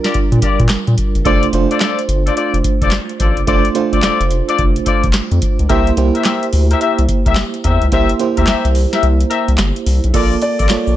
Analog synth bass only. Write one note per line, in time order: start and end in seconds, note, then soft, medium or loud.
0.32 0.40 A#2 loud
0.60 0.67 A#2 loud
0.87 0.95 A#2 medium
1.15 1.23 F#1 medium
1.25 1.47 F1 loud
1.53 1.66 F1 loud
2.08 2.30 G1 medium
2.53 2.61 F1 medium
2.82 2.89 F1 medium
3.20 3.33 A1 loud
3.37 3.45 F#1 medium
3.47 3.61 F1 loud
3.93 4.00 G1 medium
4.03 4.10 F1 soft
4.20 4.41 F1 loud
4.59 4.80 F1 loud
5.04 5.12 F1 medium
5.31 5.39 F2 medium
5.59 5.67 C#2 medium
5.70 5.91 C2 loud
5.97 6.10 C2 loud
6.53 6.74 D2 loud
6.98 7.06 C2 medium
7.26 7.34 C2 medium
7.65 7.78 E2 medium
7.82 7.89 C#2 medium
7.92 8.05 C2 loud
8.38 8.45 D2 medium
8.48 8.55 C2 soft
8.65 8.86 C2 medium
9.03 9.24 C2 loud
9.48 9.56 C2 loud
9.58 9.72 G1 medium
9.86 10.00 C2 medium
10.04 10.12 B1 medium
10.14 10.35 A#1 loud
10.60 10.67 A1 medium
10.87 10.95 A#1 loud